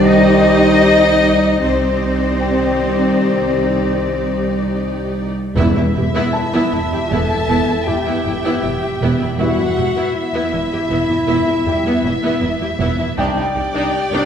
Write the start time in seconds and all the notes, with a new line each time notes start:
Already playing: C2 D#3 G3 G4 C5 F#5
0.07 D#4 G4 D5 D#5
1.61 C2 D#3 G3 C4 D#4 G4 C5 D5
2.40 G5
5.55 E1 E2 G3 B3 E4 E5
5.76 E2 E4
5.95 E1 E2 E4 G4 E5
6.15 E2 B3 E4
6.33 A5
6.53 E2 B3 E4
6.73 E1 E2 E4
6.92 E2 E4 G4
7.11 E1 E2 B3 E4 A4 A5
7.31 E2 E4
7.49 E1 E2 B3 E4
7.68 E2 E4
7.87 E1 E2 G3 E4 G4 G5
8.06 E2 B3 E4
8.26 E1 E2 E4
8.44 E2 B3 E4
8.63 E1 E2 E4
8.82 E2 E4 G4
9.02 E1 E2 B3 E4
9.20 E2 E4
9.38 E1 E2 G3 B3 E4 F#4 E5 F#5
9.57 E2 E4
9.77 E1 E2 E4 G4
9.96 E2 B3 E4
10.15 E4 E5
10.34 E2 B3 E4
10.53 E1 E2 E4
10.71 E2 E4 G4
10.90 E1 E2 B3 E4
11.09 E2 E4
11.28 E1 E2 B3 E4
11.47 E2 E4
11.66 E1 E2 G3 E4 G4
11.84 E2 B3 E4
12.03 E1 E2 E4
12.21 E2 B3 E4
12.40 E1 E2 E4
12.60 E2 E4 G4
12.78 E1 E2 B3 E4
12.98 E2 E4
13.17 C2 G3 D4 D#4 D5 G5
13.36 C2 D#4
13.55 C2 D#4 G4 G5
13.74 C2 D4 D#4
14.12 C2 D4 D#4